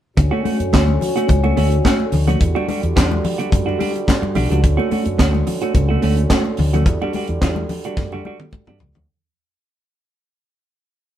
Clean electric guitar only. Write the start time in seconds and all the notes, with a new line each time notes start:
0.17 muted clean electric guitar stroke
0.31 A3 C#4 F#4
0.44 A3 C#4 F#4
0.59 muted clean electric guitar stroke
0.73 A3 C#4 F#4
0.88 muted clean electric guitar stroke
1.01 muted clean electric guitar stroke
1.16 A3 C#4 F#4
1.29 muted clean electric guitar stroke
1.44 A3 C#4 F#4
1.57 A3 C#4 F#4
1.71 muted clean electric guitar stroke
1.85 A3 C#4 F#4
1.99 muted clean electric guitar stroke
2.13 muted clean electric guitar stroke
2.27 A3 C#4 F#4
2.41 muted clean electric guitar stroke
2.55 G3 D4 F#4
2.68 G3 D4 F#4
2.83 muted clean electric guitar stroke
2.96 G3 D4 F#4
3.11 muted clean electric guitar stroke
3.23 muted clean electric guitar stroke
3.38 G3 D4 F#4
3.51 muted clean electric guitar stroke
3.66 G3 D4 F#4
3.79 G3 D4 F#4
3.94 muted clean electric guitar stroke
4.07 muted clean electric guitar stroke
4.22 muted clean electric guitar stroke
4.35 G3 D4 F#4
4.50 G3 D4 F#4
4.63 muted clean electric guitar stroke
4.77 A3 C#4 F#4
4.91 A3 C#4 F#4
5.05 muted clean electric guitar stroke
5.18 A3 C#4 F#4
5.33 muted clean electric guitar stroke
5.47 muted clean electric guitar stroke
5.62 A3 C#4 F#4
5.75 muted clean electric guitar stroke
5.89 A3 C#4 F#4
6.02 A3 C#4 F#4
6.18 muted clean electric guitar stroke
6.31 A3 C#4 F#4
6.46 muted clean electric guitar stroke
6.58 muted clean electric guitar stroke
6.73 A3 C#4 F#4
6.86 muted clean electric guitar stroke
7.02 G3 D4 F#4
7.14 G3 D4 F#4
7.29 muted clean electric guitar stroke
7.42 G3 D4 F#4
7.58 muted clean electric guitar stroke
7.70 muted clean electric guitar stroke
7.85 G3 D4 F#4
7.99 muted clean electric guitar stroke
8.13 G3 D4 F#4
8.25 G3 D4 F#4
8.40 muted clean electric guitar stroke
8.53 muted clean electric guitar stroke
8.68 G3 D4 F#4
8.96 muted clean electric guitar stroke